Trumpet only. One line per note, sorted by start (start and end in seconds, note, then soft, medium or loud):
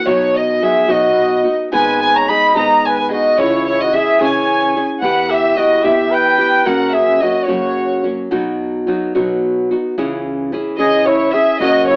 0.62 0.92 G#4 medium
0.90 1.53 F#4 medium
1.73 2.00 B4 medium
2.02 2.17 B4 medium
2.15 2.31 C#5 medium
2.29 2.56 D#5 medium
2.58 2.88 D#5 medium
2.87 2.99 B4 medium
3.00 3.12 B4 medium
3.13 3.41 F#4 medium
3.39 3.67 E4 medium
3.69 3.84 E4 medium
3.83 3.97 F#4 medium
3.96 4.23 G#4 medium
4.21 4.83 C#5 medium
5.03 5.31 B4 medium
5.30 5.59 G4 medium
5.57 5.85 F#4 medium
5.83 6.12 G4 medium
6.11 6.67 B4 medium
6.66 6.96 A#4 medium
6.94 7.24 G#4 medium
7.23 7.49 F#4 medium
7.49 8.12 F#4 soft
10.79 11.08 G#4 medium
11.07 11.35 E4 medium
11.34 11.60 G#4 medium
11.61 11.87 F#4 medium
11.89 11.96 E4 medium